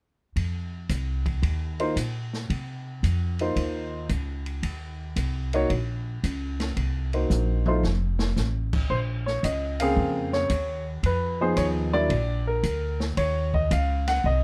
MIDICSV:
0, 0, Header, 1, 4, 480
1, 0, Start_track
1, 0, Tempo, 533808
1, 329, Time_signature, 4, 2, 24, 8
1, 12982, End_track
2, 0, Start_track
2, 0, Title_t, "Grand piano"
2, 0, Program_c, 0, 0
2, 1615, Note_on_c, 0, 58, 53
2, 1620, Note_on_c, 0, 63, 53
2, 1621, Note_on_c, 0, 65, 50
2, 1624, Note_on_c, 0, 72, 61
2, 1753, Note_off_c, 0, 58, 0
2, 1755, Note_off_c, 0, 63, 0
2, 1756, Note_off_c, 0, 65, 0
2, 1757, Note_off_c, 0, 72, 0
2, 3061, Note_on_c, 0, 58, 47
2, 3068, Note_on_c, 0, 63, 50
2, 3068, Note_on_c, 0, 65, 46
2, 3069, Note_on_c, 0, 72, 60
2, 3660, Note_off_c, 0, 58, 0
2, 3664, Note_off_c, 0, 63, 0
2, 3664, Note_off_c, 0, 65, 0
2, 3664, Note_off_c, 0, 72, 0
2, 4978, Note_on_c, 0, 58, 66
2, 4984, Note_on_c, 0, 63, 59
2, 4987, Note_on_c, 0, 66, 59
2, 4994, Note_on_c, 0, 73, 78
2, 5114, Note_off_c, 0, 58, 0
2, 5117, Note_off_c, 0, 63, 0
2, 5118, Note_off_c, 0, 66, 0
2, 5122, Note_off_c, 0, 73, 0
2, 6418, Note_on_c, 0, 58, 50
2, 6421, Note_on_c, 0, 63, 42
2, 6424, Note_on_c, 0, 66, 42
2, 6426, Note_on_c, 0, 72, 52
2, 6863, Note_off_c, 0, 58, 0
2, 6864, Note_off_c, 0, 63, 0
2, 6866, Note_off_c, 0, 66, 0
2, 6867, Note_off_c, 0, 72, 0
2, 6901, Note_on_c, 0, 57, 58
2, 6905, Note_on_c, 0, 63, 57
2, 6906, Note_on_c, 0, 72, 61
2, 6910, Note_on_c, 0, 65, 52
2, 7035, Note_off_c, 0, 57, 0
2, 7037, Note_off_c, 0, 63, 0
2, 7037, Note_off_c, 0, 72, 0
2, 7039, Note_off_c, 0, 65, 0
2, 8003, Note_on_c, 0, 72, 78
2, 8077, Note_off_c, 0, 72, 0
2, 8329, Note_on_c, 0, 73, 73
2, 8489, Note_off_c, 0, 73, 0
2, 8491, Note_on_c, 0, 75, 69
2, 8793, Note_off_c, 0, 75, 0
2, 8811, Note_on_c, 0, 77, 84
2, 8821, Note_on_c, 0, 49, 61
2, 8822, Note_on_c, 0, 58, 62
2, 8827, Note_on_c, 0, 60, 61
2, 8832, Note_on_c, 0, 68, 72
2, 9292, Note_on_c, 0, 73, 82
2, 9307, Note_off_c, 0, 77, 0
2, 9420, Note_off_c, 0, 49, 0
2, 9420, Note_off_c, 0, 58, 0
2, 9423, Note_off_c, 0, 60, 0
2, 9425, Note_off_c, 0, 68, 0
2, 9739, Note_off_c, 0, 73, 0
2, 9943, Note_on_c, 0, 71, 71
2, 10259, Note_on_c, 0, 53, 61
2, 10261, Note_on_c, 0, 59, 53
2, 10261, Note_on_c, 0, 63, 47
2, 10264, Note_on_c, 0, 68, 70
2, 10264, Note_on_c, 0, 72, 75
2, 10272, Note_off_c, 0, 71, 0
2, 10402, Note_off_c, 0, 72, 0
2, 10405, Note_on_c, 0, 73, 81
2, 10479, Note_off_c, 0, 73, 0
2, 10705, Note_off_c, 0, 53, 0
2, 10705, Note_off_c, 0, 59, 0
2, 10706, Note_off_c, 0, 63, 0
2, 10707, Note_off_c, 0, 68, 0
2, 10730, Note_on_c, 0, 54, 68
2, 10732, Note_on_c, 0, 58, 65
2, 10732, Note_on_c, 0, 74, 96
2, 10735, Note_on_c, 0, 62, 63
2, 10738, Note_on_c, 0, 64, 69
2, 10870, Note_off_c, 0, 54, 0
2, 10871, Note_off_c, 0, 58, 0
2, 10873, Note_off_c, 0, 62, 0
2, 10875, Note_off_c, 0, 64, 0
2, 11180, Note_off_c, 0, 74, 0
2, 11217, Note_on_c, 0, 70, 81
2, 11664, Note_off_c, 0, 70, 0
2, 11846, Note_on_c, 0, 73, 82
2, 12153, Note_off_c, 0, 73, 0
2, 12178, Note_on_c, 0, 75, 76
2, 12321, Note_off_c, 0, 75, 0
2, 12341, Note_on_c, 0, 77, 66
2, 12642, Note_off_c, 0, 77, 0
2, 12658, Note_on_c, 0, 78, 79
2, 12801, Note_off_c, 0, 78, 0
2, 12822, Note_on_c, 0, 75, 86
2, 12982, Note_off_c, 0, 75, 0
2, 12982, End_track
3, 0, Start_track
3, 0, Title_t, "Upright bass"
3, 0, Program_c, 1, 32
3, 323, Note_on_c, 1, 41, 60
3, 792, Note_off_c, 1, 41, 0
3, 805, Note_on_c, 1, 36, 75
3, 1272, Note_off_c, 1, 36, 0
3, 1281, Note_on_c, 1, 39, 77
3, 1750, Note_off_c, 1, 39, 0
3, 1763, Note_on_c, 1, 46, 64
3, 2231, Note_off_c, 1, 46, 0
3, 2246, Note_on_c, 1, 48, 69
3, 2713, Note_off_c, 1, 48, 0
3, 2724, Note_on_c, 1, 41, 78
3, 3192, Note_off_c, 1, 41, 0
3, 3202, Note_on_c, 1, 39, 74
3, 3670, Note_off_c, 1, 39, 0
3, 3682, Note_on_c, 1, 37, 73
3, 4150, Note_off_c, 1, 37, 0
3, 4161, Note_on_c, 1, 39, 64
3, 4629, Note_off_c, 1, 39, 0
3, 4642, Note_on_c, 1, 36, 82
3, 5110, Note_off_c, 1, 36, 0
3, 5125, Note_on_c, 1, 34, 74
3, 5591, Note_off_c, 1, 34, 0
3, 5607, Note_on_c, 1, 37, 75
3, 6072, Note_off_c, 1, 37, 0
3, 6084, Note_on_c, 1, 36, 81
3, 6551, Note_off_c, 1, 36, 0
3, 6564, Note_on_c, 1, 34, 83
3, 7031, Note_off_c, 1, 34, 0
3, 7043, Note_on_c, 1, 29, 75
3, 7510, Note_off_c, 1, 29, 0
3, 7521, Note_on_c, 1, 33, 75
3, 7989, Note_off_c, 1, 33, 0
3, 8003, Note_on_c, 1, 34, 69
3, 8470, Note_off_c, 1, 34, 0
3, 8480, Note_on_c, 1, 37, 76
3, 8949, Note_off_c, 1, 37, 0
3, 8961, Note_on_c, 1, 41, 88
3, 9430, Note_off_c, 1, 41, 0
3, 9440, Note_on_c, 1, 39, 73
3, 9909, Note_off_c, 1, 39, 0
3, 9919, Note_on_c, 1, 41, 81
3, 10389, Note_off_c, 1, 41, 0
3, 10400, Note_on_c, 1, 39, 83
3, 10870, Note_off_c, 1, 39, 0
3, 10877, Note_on_c, 1, 34, 81
3, 11349, Note_off_c, 1, 34, 0
3, 11361, Note_on_c, 1, 38, 83
3, 11831, Note_off_c, 1, 38, 0
3, 11843, Note_on_c, 1, 39, 77
3, 12313, Note_off_c, 1, 39, 0
3, 12327, Note_on_c, 1, 37, 86
3, 12796, Note_off_c, 1, 37, 0
3, 12806, Note_on_c, 1, 36, 83
3, 12982, Note_off_c, 1, 36, 0
3, 12982, End_track
4, 0, Start_track
4, 0, Title_t, "Drums"
4, 324, Note_on_c, 9, 36, 20
4, 327, Note_on_c, 9, 51, 46
4, 414, Note_off_c, 9, 36, 0
4, 417, Note_off_c, 9, 51, 0
4, 803, Note_on_c, 9, 44, 52
4, 803, Note_on_c, 9, 51, 50
4, 804, Note_on_c, 9, 36, 16
4, 893, Note_off_c, 9, 44, 0
4, 893, Note_off_c, 9, 51, 0
4, 894, Note_off_c, 9, 36, 0
4, 1131, Note_on_c, 9, 36, 44
4, 1133, Note_on_c, 9, 51, 35
4, 1221, Note_off_c, 9, 36, 0
4, 1223, Note_off_c, 9, 51, 0
4, 1286, Note_on_c, 9, 36, 18
4, 1287, Note_on_c, 9, 51, 47
4, 1376, Note_off_c, 9, 36, 0
4, 1377, Note_off_c, 9, 51, 0
4, 1614, Note_on_c, 9, 51, 40
4, 1704, Note_off_c, 9, 51, 0
4, 1766, Note_on_c, 9, 36, 22
4, 1769, Note_on_c, 9, 44, 51
4, 1769, Note_on_c, 9, 51, 58
4, 1856, Note_off_c, 9, 36, 0
4, 1859, Note_off_c, 9, 44, 0
4, 1859, Note_off_c, 9, 51, 0
4, 2098, Note_on_c, 9, 38, 35
4, 2188, Note_off_c, 9, 38, 0
4, 2246, Note_on_c, 9, 36, 21
4, 2249, Note_on_c, 9, 51, 49
4, 2336, Note_off_c, 9, 36, 0
4, 2339, Note_off_c, 9, 51, 0
4, 2726, Note_on_c, 9, 36, 18
4, 2731, Note_on_c, 9, 44, 45
4, 2731, Note_on_c, 9, 51, 51
4, 2816, Note_off_c, 9, 36, 0
4, 2821, Note_off_c, 9, 44, 0
4, 2821, Note_off_c, 9, 51, 0
4, 3050, Note_on_c, 9, 51, 36
4, 3139, Note_off_c, 9, 51, 0
4, 3203, Note_on_c, 9, 36, 17
4, 3205, Note_on_c, 9, 51, 52
4, 3293, Note_off_c, 9, 36, 0
4, 3295, Note_off_c, 9, 51, 0
4, 3680, Note_on_c, 9, 44, 52
4, 3680, Note_on_c, 9, 51, 48
4, 3683, Note_on_c, 9, 36, 17
4, 3770, Note_off_c, 9, 44, 0
4, 3770, Note_off_c, 9, 51, 0
4, 3773, Note_off_c, 9, 36, 0
4, 4011, Note_on_c, 9, 51, 36
4, 4101, Note_off_c, 9, 51, 0
4, 4164, Note_on_c, 9, 36, 17
4, 4164, Note_on_c, 9, 51, 55
4, 4254, Note_off_c, 9, 36, 0
4, 4254, Note_off_c, 9, 51, 0
4, 4643, Note_on_c, 9, 44, 54
4, 4643, Note_on_c, 9, 51, 56
4, 4645, Note_on_c, 9, 36, 18
4, 4733, Note_off_c, 9, 44, 0
4, 4733, Note_off_c, 9, 51, 0
4, 4735, Note_off_c, 9, 36, 0
4, 4972, Note_on_c, 9, 51, 42
4, 5062, Note_off_c, 9, 51, 0
4, 5125, Note_on_c, 9, 51, 50
4, 5126, Note_on_c, 9, 36, 17
4, 5215, Note_off_c, 9, 51, 0
4, 5216, Note_off_c, 9, 36, 0
4, 5608, Note_on_c, 9, 36, 17
4, 5608, Note_on_c, 9, 44, 44
4, 5608, Note_on_c, 9, 51, 52
4, 5698, Note_off_c, 9, 36, 0
4, 5698, Note_off_c, 9, 44, 0
4, 5698, Note_off_c, 9, 51, 0
4, 5933, Note_on_c, 9, 38, 49
4, 5933, Note_on_c, 9, 51, 39
4, 6023, Note_off_c, 9, 38, 0
4, 6023, Note_off_c, 9, 51, 0
4, 6085, Note_on_c, 9, 51, 47
4, 6086, Note_on_c, 9, 36, 23
4, 6175, Note_off_c, 9, 51, 0
4, 6176, Note_off_c, 9, 36, 0
4, 6412, Note_on_c, 9, 51, 33
4, 6502, Note_off_c, 9, 51, 0
4, 6568, Note_on_c, 9, 44, 52
4, 6568, Note_on_c, 9, 47, 35
4, 6658, Note_off_c, 9, 44, 0
4, 6658, Note_off_c, 9, 47, 0
4, 6885, Note_on_c, 9, 47, 54
4, 6975, Note_off_c, 9, 47, 0
4, 7044, Note_on_c, 9, 38, 50
4, 7133, Note_off_c, 9, 38, 0
4, 7365, Note_on_c, 9, 38, 70
4, 7454, Note_off_c, 9, 38, 0
4, 7523, Note_on_c, 9, 38, 43
4, 7523, Note_on_c, 9, 44, 53
4, 7613, Note_off_c, 9, 38, 0
4, 7613, Note_off_c, 9, 44, 0
4, 7849, Note_on_c, 9, 49, 63
4, 7852, Note_on_c, 9, 36, 65
4, 7939, Note_off_c, 9, 49, 0
4, 7942, Note_off_c, 9, 36, 0
4, 8005, Note_on_c, 9, 36, 24
4, 8095, Note_off_c, 9, 36, 0
4, 8337, Note_on_c, 9, 38, 26
4, 8427, Note_off_c, 9, 38, 0
4, 8485, Note_on_c, 9, 36, 23
4, 8486, Note_on_c, 9, 44, 62
4, 8486, Note_on_c, 9, 51, 59
4, 8575, Note_off_c, 9, 36, 0
4, 8576, Note_off_c, 9, 44, 0
4, 8576, Note_off_c, 9, 51, 0
4, 8809, Note_on_c, 9, 51, 64
4, 8899, Note_off_c, 9, 51, 0
4, 8962, Note_on_c, 9, 36, 21
4, 9052, Note_off_c, 9, 36, 0
4, 9284, Note_on_c, 9, 38, 32
4, 9374, Note_off_c, 9, 38, 0
4, 9437, Note_on_c, 9, 44, 53
4, 9437, Note_on_c, 9, 51, 56
4, 9441, Note_on_c, 9, 36, 23
4, 9527, Note_off_c, 9, 44, 0
4, 9527, Note_off_c, 9, 51, 0
4, 9531, Note_off_c, 9, 36, 0
4, 9922, Note_on_c, 9, 36, 24
4, 9922, Note_on_c, 9, 51, 55
4, 10012, Note_off_c, 9, 36, 0
4, 10012, Note_off_c, 9, 51, 0
4, 10400, Note_on_c, 9, 44, 53
4, 10400, Note_on_c, 9, 51, 62
4, 10402, Note_on_c, 9, 36, 22
4, 10490, Note_off_c, 9, 44, 0
4, 10490, Note_off_c, 9, 51, 0
4, 10492, Note_off_c, 9, 36, 0
4, 10880, Note_on_c, 9, 51, 55
4, 10881, Note_on_c, 9, 36, 17
4, 10970, Note_off_c, 9, 51, 0
4, 10971, Note_off_c, 9, 36, 0
4, 11361, Note_on_c, 9, 44, 54
4, 11361, Note_on_c, 9, 51, 51
4, 11363, Note_on_c, 9, 36, 15
4, 11451, Note_off_c, 9, 44, 0
4, 11451, Note_off_c, 9, 51, 0
4, 11453, Note_off_c, 9, 36, 0
4, 11690, Note_on_c, 9, 38, 44
4, 11780, Note_off_c, 9, 38, 0
4, 11843, Note_on_c, 9, 51, 57
4, 11844, Note_on_c, 9, 36, 22
4, 11933, Note_off_c, 9, 51, 0
4, 11934, Note_off_c, 9, 36, 0
4, 12174, Note_on_c, 9, 36, 46
4, 12264, Note_off_c, 9, 36, 0
4, 12327, Note_on_c, 9, 36, 26
4, 12328, Note_on_c, 9, 44, 55
4, 12328, Note_on_c, 9, 51, 62
4, 12417, Note_off_c, 9, 36, 0
4, 12418, Note_off_c, 9, 44, 0
4, 12418, Note_off_c, 9, 51, 0
4, 12656, Note_on_c, 9, 38, 30
4, 12656, Note_on_c, 9, 51, 57
4, 12746, Note_off_c, 9, 38, 0
4, 12746, Note_off_c, 9, 51, 0
4, 12808, Note_on_c, 9, 36, 16
4, 12898, Note_off_c, 9, 36, 0
4, 12982, End_track
0, 0, End_of_file